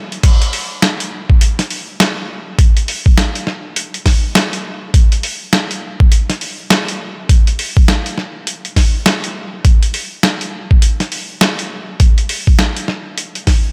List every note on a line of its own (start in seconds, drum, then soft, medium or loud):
0.12 closed hi-hat soft
0.23 kick loud
0.23 closed hi-hat medium
0.23 crash medium
0.42 closed hi-hat medium
0.53 open hi-hat medium
0.82 snare loud
0.82 closed hi-hat medium
1.00 closed hi-hat medium
1.30 kick loud
1.41 closed hi-hat medium
1.59 snare soft
1.59 closed hi-hat medium
1.70 open hi-hat medium
2.00 snare loud
2.00 closed hi-hat medium
2.59 kick loud
2.59 closed hi-hat medium
2.77 closed hi-hat medium
2.88 open hi-hat medium
3.06 kick loud
3.18 snare loud
3.18 closed hi-hat medium
3.35 closed hi-hat medium
3.47 snare soft
3.76 closed hi-hat medium
3.94 closed hi-hat medium
4.06 kick medium
4.06 snare soft
4.06 open hi-hat medium
4.35 snare loud
4.35 closed hi-hat medium
4.53 closed hi-hat medium
4.94 kick loud
4.94 closed hi-hat medium
5.12 closed hi-hat medium
5.23 open hi-hat medium
5.53 snare loud
5.53 closed hi-hat medium
5.71 closed hi-hat medium
6.00 kick loud
6.12 closed hi-hat medium
6.30 snare soft
6.30 closed hi-hat medium
6.41 open hi-hat medium
6.70 snare loud
6.70 closed hi-hat medium
6.88 closed hi-hat medium
7.29 kick loud
7.29 closed hi-hat medium
7.47 closed hi-hat medium
7.59 open hi-hat medium
7.77 kick loud
7.88 snare loud
7.88 closed hi-hat medium
8.06 closed hi-hat medium
8.18 snare soft
8.47 closed hi-hat medium
8.65 closed hi-hat medium
8.76 kick medium
8.76 snare soft
8.76 open hi-hat medium
9.06 snare loud
9.06 closed hi-hat medium
9.24 closed hi-hat medium
9.65 kick loud
9.65 closed hi-hat medium
9.83 closed hi-hat medium
9.94 open hi-hat medium
10.23 snare loud
10.23 closed hi-hat medium
10.41 closed hi-hat medium
10.71 kick loud
10.82 closed hi-hat medium
11.00 snare soft
11.00 closed hi-hat soft
11.12 open hi-hat medium
11.41 snare loud
11.41 closed hi-hat medium
11.59 closed hi-hat medium
12.00 kick loud
12.00 closed hi-hat medium
12.18 closed hi-hat medium
12.29 open hi-hat medium
12.47 kick loud
12.59 snare loud
12.59 closed hi-hat medium
12.77 closed hi-hat medium
12.88 snare soft
13.18 closed hi-hat medium
13.35 closed hi-hat medium
13.47 kick medium
13.47 snare soft
13.47 open hi-hat medium